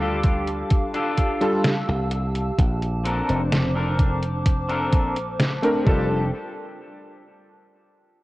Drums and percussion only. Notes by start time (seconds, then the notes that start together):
0.24 kick, closed hi-hat
0.47 closed hi-hat
0.70 kick, closed hi-hat
0.94 closed hi-hat
1.17 kick, closed hi-hat
1.41 closed hi-hat
1.64 snare, closed hi-hat
2.11 closed hi-hat
2.35 closed hi-hat
2.58 kick, closed hi-hat
2.82 closed hi-hat
3.05 closed hi-hat
3.29 closed hi-hat
3.52 snare, closed hi-hat
3.99 kick, closed hi-hat
4.23 closed hi-hat
4.46 kick, closed hi-hat
4.70 closed hi-hat
4.93 kick, closed hi-hat
5.16 closed hi-hat
5.39 snare, closed hi-hat
5.63 closed hi-hat
5.87 kick